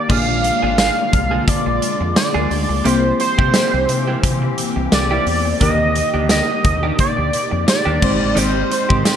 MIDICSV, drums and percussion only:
0, 0, Header, 1, 2, 480
1, 0, Start_track
1, 0, Tempo, 689655
1, 65, Time_signature, 4, 2, 24, 8
1, 6377, End_track
2, 0, Start_track
2, 0, Title_t, "Drums"
2, 67, Note_on_c, 9, 36, 109
2, 68, Note_on_c, 9, 49, 104
2, 137, Note_off_c, 9, 36, 0
2, 137, Note_off_c, 9, 49, 0
2, 308, Note_on_c, 9, 42, 78
2, 378, Note_off_c, 9, 42, 0
2, 544, Note_on_c, 9, 38, 122
2, 546, Note_on_c, 9, 42, 92
2, 546, Note_on_c, 9, 54, 91
2, 547, Note_off_c, 9, 54, 0
2, 547, Note_on_c, 9, 54, 73
2, 614, Note_off_c, 9, 38, 0
2, 615, Note_off_c, 9, 42, 0
2, 616, Note_off_c, 9, 54, 0
2, 787, Note_on_c, 9, 42, 72
2, 789, Note_on_c, 9, 36, 107
2, 857, Note_off_c, 9, 42, 0
2, 858, Note_off_c, 9, 36, 0
2, 1027, Note_on_c, 9, 42, 88
2, 1028, Note_on_c, 9, 36, 94
2, 1097, Note_off_c, 9, 42, 0
2, 1098, Note_off_c, 9, 36, 0
2, 1269, Note_on_c, 9, 42, 84
2, 1338, Note_off_c, 9, 42, 0
2, 1505, Note_on_c, 9, 54, 96
2, 1506, Note_off_c, 9, 54, 0
2, 1506, Note_on_c, 9, 38, 109
2, 1506, Note_on_c, 9, 42, 67
2, 1506, Note_on_c, 9, 54, 65
2, 1575, Note_off_c, 9, 38, 0
2, 1575, Note_off_c, 9, 42, 0
2, 1576, Note_off_c, 9, 54, 0
2, 1747, Note_on_c, 9, 46, 75
2, 1817, Note_off_c, 9, 46, 0
2, 1986, Note_on_c, 9, 42, 94
2, 2056, Note_off_c, 9, 42, 0
2, 2226, Note_on_c, 9, 42, 73
2, 2295, Note_off_c, 9, 42, 0
2, 2357, Note_on_c, 9, 36, 97
2, 2427, Note_off_c, 9, 36, 0
2, 2462, Note_on_c, 9, 38, 124
2, 2463, Note_on_c, 9, 42, 93
2, 2463, Note_on_c, 9, 54, 86
2, 2464, Note_off_c, 9, 54, 0
2, 2464, Note_on_c, 9, 54, 75
2, 2531, Note_off_c, 9, 38, 0
2, 2533, Note_off_c, 9, 42, 0
2, 2534, Note_off_c, 9, 54, 0
2, 2706, Note_on_c, 9, 42, 75
2, 2776, Note_off_c, 9, 42, 0
2, 2947, Note_on_c, 9, 36, 95
2, 2948, Note_on_c, 9, 42, 89
2, 3017, Note_off_c, 9, 36, 0
2, 3018, Note_off_c, 9, 42, 0
2, 3187, Note_on_c, 9, 42, 88
2, 3257, Note_off_c, 9, 42, 0
2, 3425, Note_on_c, 9, 38, 109
2, 3425, Note_on_c, 9, 42, 68
2, 3425, Note_on_c, 9, 54, 63
2, 3494, Note_off_c, 9, 38, 0
2, 3494, Note_off_c, 9, 42, 0
2, 3495, Note_off_c, 9, 54, 0
2, 3665, Note_on_c, 9, 46, 79
2, 3735, Note_off_c, 9, 46, 0
2, 3903, Note_on_c, 9, 42, 98
2, 3905, Note_on_c, 9, 36, 112
2, 3973, Note_off_c, 9, 42, 0
2, 3975, Note_off_c, 9, 36, 0
2, 4144, Note_on_c, 9, 42, 79
2, 4214, Note_off_c, 9, 42, 0
2, 4380, Note_on_c, 9, 38, 124
2, 4382, Note_on_c, 9, 42, 91
2, 4383, Note_on_c, 9, 54, 74
2, 4386, Note_off_c, 9, 54, 0
2, 4386, Note_on_c, 9, 54, 88
2, 4450, Note_off_c, 9, 38, 0
2, 4451, Note_off_c, 9, 42, 0
2, 4456, Note_off_c, 9, 54, 0
2, 4624, Note_on_c, 9, 42, 76
2, 4626, Note_on_c, 9, 36, 111
2, 4694, Note_off_c, 9, 42, 0
2, 4696, Note_off_c, 9, 36, 0
2, 4863, Note_on_c, 9, 42, 86
2, 4865, Note_on_c, 9, 36, 96
2, 4932, Note_off_c, 9, 42, 0
2, 4934, Note_off_c, 9, 36, 0
2, 5104, Note_on_c, 9, 42, 85
2, 5174, Note_off_c, 9, 42, 0
2, 5344, Note_on_c, 9, 54, 94
2, 5345, Note_off_c, 9, 54, 0
2, 5345, Note_on_c, 9, 38, 113
2, 5345, Note_on_c, 9, 42, 68
2, 5345, Note_on_c, 9, 54, 66
2, 5414, Note_off_c, 9, 38, 0
2, 5414, Note_off_c, 9, 42, 0
2, 5415, Note_off_c, 9, 54, 0
2, 5585, Note_on_c, 9, 36, 109
2, 5585, Note_on_c, 9, 57, 81
2, 5654, Note_off_c, 9, 36, 0
2, 5654, Note_off_c, 9, 57, 0
2, 5824, Note_on_c, 9, 42, 98
2, 5893, Note_off_c, 9, 42, 0
2, 6066, Note_on_c, 9, 42, 79
2, 6135, Note_off_c, 9, 42, 0
2, 6196, Note_on_c, 9, 36, 100
2, 6266, Note_off_c, 9, 36, 0
2, 6301, Note_on_c, 9, 38, 125
2, 6302, Note_on_c, 9, 54, 89
2, 6303, Note_on_c, 9, 42, 91
2, 6304, Note_off_c, 9, 54, 0
2, 6304, Note_on_c, 9, 54, 79
2, 6371, Note_off_c, 9, 38, 0
2, 6373, Note_off_c, 9, 42, 0
2, 6373, Note_off_c, 9, 54, 0
2, 6377, End_track
0, 0, End_of_file